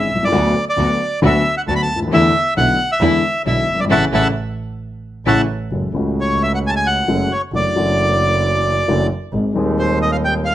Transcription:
0.00 0.24 E5 medium
0.10 0.33 C2 medium
0.15 0.21 B1 medium
0.21 0.27 C2 medium
0.21 0.65 D5 medium
0.27 0.33 C#2 medium
0.32 0.52 D2 medium
0.32 0.52 D3 medium
0.32 0.52 F#3 medium
0.32 0.51 B3 medium
0.32 0.52 B3 medium
0.32 0.52 D4 medium
0.32 0.52 F#4 medium
0.69 1.20 D5 medium
0.76 0.96 D2 medium
0.76 0.97 D2 medium
0.76 0.96 D3 medium
0.76 0.96 F#3 soft
0.76 0.96 B3 soft
0.76 0.97 D4 soft
0.76 0.96 F#4 medium
0.76 0.97 F#4 medium
1.22 1.41 D2 medium
1.22 1.41 D3 medium
1.22 1.41 F#3 medium
1.22 1.41 B3 medium
1.22 1.41 D4 medium
1.22 1.41 F#4 medium
1.26 1.55 E5 medium
1.58 1.62 F#5 medium
1.67 1.86 D2 medium
1.67 1.86 D2 soft
1.67 1.86 D3 soft
1.67 1.86 F#3 soft
1.67 1.86 B3 soft
1.67 1.86 D4 soft
1.67 1.86 F#4 medium
1.67 1.86 F#4 soft
1.67 1.74 A5 medium
1.76 1.82 B5 medium
1.82 2.00 A5 medium
1.90 2.11 D2 medium
1.96 2.01 C#2 soft
2.02 2.07 D2 medium
2.08 2.12 D#2 medium
2.08 2.30 A3 medium
2.12 2.30 E2 medium
2.12 2.31 E2 medium
2.12 2.31 D3 medium
2.12 2.31 E3 medium
2.12 2.31 A3 medium
2.12 2.31 B3 medium
2.12 2.30 D4 medium
2.12 2.30 E4 medium
2.12 2.31 E4 medium
2.12 2.54 E5 medium
2.56 2.75 B1 medium
2.56 2.75 B2 medium
2.56 2.75 D3 soft
2.56 2.75 A3 soft
2.56 2.75 B3 soft
2.56 2.75 D4 soft
2.56 2.75 E4 medium
2.56 2.91 F#5 medium
2.92 3.42 E5 medium
3.00 3.19 E2 loud
3.00 3.20 E2 medium
3.00 3.20 D3 medium
3.00 3.20 E3 medium
3.00 3.19 G#3 medium
3.00 3.20 G#3 medium
3.00 3.20 B3 medium
3.00 3.19 D4 medium
3.00 3.19 E4 medium
3.00 3.20 E4 medium
3.45 3.64 B1 medium
3.45 3.64 B1 soft
3.45 3.64 B2 medium
3.45 3.64 D3 soft
3.45 3.64 G#3 soft
3.45 3.64 B3 soft
3.45 3.64 D4 soft
3.45 3.64 E4 medium
3.45 3.80 E5 medium
3.67 3.88 G1 medium
3.74 3.79 F#1 medium
3.80 3.85 G1 medium
3.80 3.85 D5 medium
3.85 3.90 G#1 medium
3.85 4.06 A1 medium
3.90 4.05 A2 medium
3.90 4.05 C#3 medium
3.90 4.05 E3 medium
3.90 4.04 A3 medium
3.90 4.04 C#4 medium
3.90 4.04 E4 medium
3.90 4.05 E5 medium
3.90 4.05 F#5 medium
3.90 4.05 A5 medium
4.12 4.29 A1 medium
4.12 4.27 A2 medium
4.12 4.27 C#3 medium
4.12 4.27 E3 medium
4.12 4.27 A3 medium
4.12 4.27 C#4 medium
4.12 4.26 E4 medium
4.12 4.28 E5 medium
4.12 4.28 F#5 medium
4.12 4.28 A5 medium
5.26 5.43 A1 medium
5.26 5.41 A2 medium
5.26 5.41 C#3 medium
5.26 5.41 E3 medium
5.26 5.41 A3 medium
5.26 5.41 C#4 medium
5.26 5.41 E4 medium
5.26 5.42 E5 medium
5.26 5.42 F#5 medium
5.26 5.42 A5 medium
5.71 5.91 F#1 soft
5.71 5.91 F#2 soft
5.71 5.91 C#3 soft
5.71 5.91 F#3 soft
5.71 5.91 G#3 soft
5.71 5.91 A3 soft
5.71 5.91 F#4 soft
5.93 7.02 C#2 medium
5.93 7.03 C#2 medium
5.93 7.03 C#3 medium
5.93 7.02 G#3 medium
5.93 7.03 A3 medium
5.93 7.03 F#4 medium
6.21 6.43 C#5 medium
6.43 6.52 E5 medium
6.55 6.59 F#5 medium
6.67 6.71 G#5 medium
6.67 6.74 A5 medium
6.76 6.87 G#5 medium
6.87 7.33 F#5 medium
7.08 7.27 F#1 medium
7.08 7.27 F#2 medium
7.08 7.27 C#3 medium
7.08 7.27 F#3 medium
7.08 7.27 G#3 medium
7.08 7.27 A3 medium
7.08 7.27 F#4 medium
7.32 7.42 C#5 medium
7.52 7.72 F#1 medium
7.52 7.72 F#2 soft
7.52 7.72 E3 soft
7.52 7.72 F#3 soft
7.52 7.72 A3 soft
7.52 7.72 D4 soft
7.52 7.72 F#4 soft
7.52 9.07 D5 medium
7.74 8.82 F#1 medium
7.74 8.82 F#2 medium
7.74 8.81 E3 medium
7.74 8.82 F#3 medium
7.74 8.82 A3 medium
7.74 8.82 D4 medium
7.78 8.83 F#4 medium
8.88 9.06 F#1 medium
8.88 9.07 F#2 medium
8.88 9.07 E3 medium
8.88 9.07 F#3 medium
8.88 9.06 A3 medium
8.88 9.07 D4 medium
8.88 9.07 F#4 medium
9.33 9.51 G#1 medium
9.33 9.51 G#1 soft
9.33 9.51 G#2 soft
9.33 9.51 D#3 soft
9.33 9.51 G#3 soft
9.33 9.51 C4 soft
9.33 9.52 G#4 soft
9.54 10.55 D#1 medium
9.54 10.55 D#2 medium
9.54 10.55 D#3 medium
9.54 10.55 G#3 medium
9.54 10.55 C4 medium
9.54 10.55 G#4 medium
9.79 9.99 C5 medium
10.02 10.11 D#5 medium
10.12 10.17 F5 medium
10.25 10.34 G5 medium
10.45 10.55 F5 medium

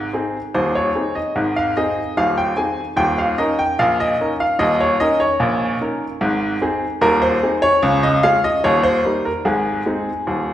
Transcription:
0.13 0.36 C4 soft
0.13 0.36 D#4 soft
0.13 0.36 G#4 soft
0.54 0.89 D#1 medium
0.54 0.89 D#2 medium
0.54 0.75 C5 medium
0.75 1.14 C#5 medium
0.95 1.18 C4 soft
0.95 1.18 D#4 soft
0.95 1.18 G#4 soft
1.15 1.54 D#5 medium
1.36 1.70 G#1 medium
1.36 1.70 G#2 medium
1.56 1.76 F5 medium
1.77 1.99 C4 soft
1.77 1.99 D#4 soft
1.77 1.99 G#4 soft
1.77 2.15 D#5 medium
2.17 2.51 D#1 medium
2.17 2.52 D#2 medium
2.17 2.37 F5 medium
2.38 2.57 G5 medium
2.57 2.79 C4 soft
2.57 2.80 D#4 soft
2.57 2.80 G#4 soft
2.57 2.89 G#5 medium
2.96 3.31 D#1 medium
2.96 3.32 D#2 medium
2.96 3.17 G5 medium
3.18 3.38 F5 medium
3.38 3.60 C#4 soft
3.38 3.61 D#4 soft
3.38 3.61 A#4 medium
3.38 3.58 D#5 medium
3.59 3.79 G5 medium
3.79 4.13 A#1 medium
3.79 4.13 A#2 medium
3.79 3.99 F5 medium
4.00 4.32 D#5 medium
4.20 4.42 C#4 soft
4.20 4.42 D#4 soft
4.20 4.43 A#4 soft
4.40 4.60 F5 medium
4.59 4.93 D#1 medium
4.59 4.94 D#2 medium
4.59 4.79 D#5 medium
4.80 5.00 C#5 medium
5.00 5.22 C#4 soft
5.00 5.23 D#4 medium
5.00 5.23 A#4 soft
5.00 5.20 D#5 medium
5.20 5.77 C#5 medium
5.40 5.74 A#1 medium
5.40 5.74 A#2 medium
5.81 6.03 C#4 soft
5.81 6.03 D#4 soft
5.81 6.04 A#4 soft
6.21 6.55 G#1 medium
6.21 6.55 G#2 medium
6.61 6.83 C4 medium
6.61 6.84 D#4 soft
6.61 6.84 G#4 medium
7.01 7.36 D#1 medium
7.01 7.36 D#2 medium
7.01 7.22 A#4 loud
7.22 7.54 C5 medium
7.43 7.65 C4 soft
7.43 7.65 D#4 medium
7.43 7.65 G#4 medium
7.62 8.00 C#5 loud
7.83 8.17 C#2 medium
7.83 8.17 C#3 medium
8.03 8.23 D#5 medium
8.23 8.46 G#3 medium
8.23 8.46 C#4 medium
8.23 8.46 F4 medium
8.23 8.43 F5 loud
8.44 8.64 D#5 medium
8.64 8.98 D#1 medium
8.64 8.98 D#2 medium
8.64 8.84 C#5 medium
8.83 9.22 C5 medium
9.05 9.27 G3 soft
9.05 9.28 A#3 soft
9.05 9.28 D#4 soft
9.25 9.45 A#4 medium
9.45 9.80 G#1 medium
9.45 9.80 G#2 medium
9.45 10.54 G#4 medium
9.86 10.09 G#3 soft
9.86 10.09 C4 soft
9.86 10.09 D#4 soft
10.27 10.54 D#1 medium
10.27 10.54 D#2 medium

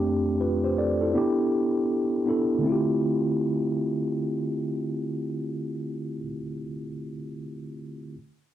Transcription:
0.00 1.07 F2 medium
0.00 1.07 A3 medium
0.00 1.08 C4 medium
0.00 1.08 D4 medium
0.00 0.44 G4 medium
0.41 0.63 F4 medium
0.41 0.63 B4 medium
0.64 0.77 G4 medium
0.64 0.77 C5 medium
0.78 1.00 A4 soft
0.78 1.00 D5 medium
1.02 1.15 E4 medium
1.02 1.37 A4 medium
1.14 2.22 B3 medium
1.14 2.22 D4 medium
1.14 2.23 E4 medium
1.14 2.23 G4 medium
2.26 2.62 B3 medium
2.26 2.63 D4 medium
2.26 2.63 E4 medium
2.26 2.64 A4 medium
2.59 6.17 D3 medium
2.59 6.19 A3 medium
2.64 6.22 C4 medium
2.64 6.25 E4 medium
2.69 6.28 F4 medium
2.69 6.30 G4 medium

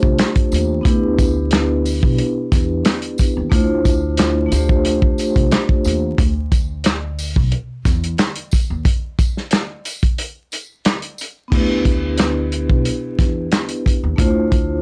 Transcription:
0.00 0.16 C2 medium
0.00 0.79 A3 medium
0.00 0.80 D4 medium
0.00 0.81 F4 medium
0.00 0.82 G4 medium
0.00 0.83 C5 medium
0.00 kick loud
0.18 snare loud
0.18 clap loud
0.18 closed hi-hat medium
0.36 kick loud
0.36 closed hi-hat medium
0.52 0.81 D#2 loud
0.52 closed hi-hat medium
0.52 tambourine medium
0.81 1.99 D2 loud
0.81 3.46 B3 medium
0.81 3.47 D4 medium
0.81 kick loud
0.86 3.48 E4 medium
0.86 3.49 G4 medium
0.86 closed hi-hat medium
0.90 3.50 B4 medium
1.19 kick loud
1.19 closed hi-hat medium
1.19 tambourine medium
1.51 snare loud
1.51 clap loud
1.51 closed hi-hat loud
1.85 open hi-hat medium
1.85 tambourine medium
2.03 2.16 B1 medium
2.03 kick medium
2.18 closed hi-hat medium
2.52 2.81 E2 loud
2.52 kick loud
2.52 snare soft
2.52 closed hi-hat medium
2.52 tambourine medium
2.85 snare loud
2.85 clap loud
2.85 closed hi-hat medium
3.02 closed hi-hat medium
3.18 kick medium
3.18 closed hi-hat medium
3.18 tambourine medium
3.37 3.50 D#2 medium
3.49 4.48 D2 loud
3.49 4.45 A3 medium
3.49 4.47 D4 medium
3.49 4.52 E4 medium
3.49 4.49 F4 medium
3.49 kick loud
3.49 closed hi-hat loud
3.54 4.53 C5 medium
3.85 kick medium
3.85 closed hi-hat medium
3.85 tambourine medium
4.17 snare loud
4.17 clap medium
4.17 closed hi-hat loud
4.46 6.12 A3 medium
4.46 6.13 D4 medium
4.51 5.10 D2 loud
4.51 6.15 F4 medium
4.51 6.16 G4 medium
4.51 closed hi-hat medium
4.51 tambourine medium
4.55 6.17 C5 medium
4.69 kick loud
4.85 closed hi-hat medium
5.02 kick loud
5.18 closed hi-hat medium
5.18 tambourine medium
5.36 5.50 C2 medium
5.36 kick loud
5.36 closed hi-hat medium
5.51 snare loud
5.51 clap loud
5.51 closed hi-hat medium
5.69 kick loud
5.84 6.14 D#2 loud
5.84 closed hi-hat medium
5.84 tambourine medium
6.18 7.32 D2 loud
6.18 kick loud
6.18 closed hi-hat medium
6.52 kick medium
6.52 closed hi-hat medium
6.52 tambourine medium
6.84 snare loud
6.84 clap loud
6.84 closed hi-hat loud
7.19 open hi-hat medium
7.19 tambourine medium
7.36 7.50 B1 medium
7.36 kick loud
7.52 closed hi-hat medium
7.85 8.14 E2 loud
7.85 kick medium
7.85 snare soft
7.85 closed hi-hat medium
7.85 tambourine medium
8.04 closed hi-hat medium
8.18 snare loud
8.18 clap loud
8.18 closed hi-hat medium
8.36 closed hi-hat medium
8.52 kick medium
8.52 closed hi-hat medium
8.52 tambourine medium
8.70 8.83 D#2 medium
8.85 kick loud
8.85 closed hi-hat loud
9.19 kick loud
9.19 closed hi-hat medium
9.19 tambourine medium
9.37 snare soft
9.51 snare loud
9.51 clap loud
9.51 closed hi-hat loud
9.85 closed hi-hat medium
9.85 tambourine medium
10.03 kick medium
10.03 closed hi-hat soft
10.18 closed hi-hat medium
10.52 closed hi-hat medium
10.52 tambourine medium
10.85 snare loud
10.85 clap loud
10.85 closed hi-hat medium
11.02 closed hi-hat medium
11.18 closed hi-hat medium
11.18 tambourine medium
11.48 14.13 B3 medium
11.48 14.14 D4 medium
11.48 kick loud
11.48 crash medium
11.52 12.66 D2 loud
11.52 14.15 E4 medium
11.52 14.16 G4 medium
11.57 14.17 B4 medium
11.85 kick medium
11.85 closed hi-hat medium
12.18 snare loud
12.18 clap medium
12.18 closed hi-hat loud
12.52 closed hi-hat medium
12.69 12.83 B1 medium
12.69 kick medium
12.85 closed hi-hat medium
13.19 13.47 E2 medium
13.19 kick loud
13.19 snare soft
13.19 closed hi-hat medium
13.52 snare loud
13.52 clap loud
13.52 closed hi-hat medium
13.69 closed hi-hat medium
13.86 kick medium
13.86 closed hi-hat medium
14.04 14.17 D#2 medium
14.16 14.82 D2 loud
14.16 14.82 A3 medium
14.16 14.82 D4 medium
14.16 14.82 E4 medium
14.16 14.82 F4 medium
14.16 kick loud
14.16 closed hi-hat medium
14.20 14.82 C5 medium
14.52 kick medium
14.52 closed hi-hat medium

